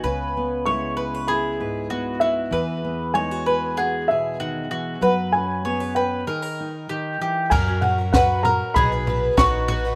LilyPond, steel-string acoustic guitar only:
\new Staff \with { instrumentName = "Steel-string acoustic guitar" } { \time 4/4 \key fis \mixolydian \tempo 4 = 96 << { <b b'>8 b8 e'8 gis'16 b'16 e'8 b'8 b8 e'8 | gis'8 b8 dis'16 fis'16 gis'8 fis'8 gis'4. | b'8 cis'8 gis'16 b'16 b'8 gis'16 ais'16 dis'4. | r1 | } \\ { cis4 gis4. gis,4. | e4 gis4. b,8 dis8 e8 | fis4 b4 dis4 dis8 e8 | r1 | } >> }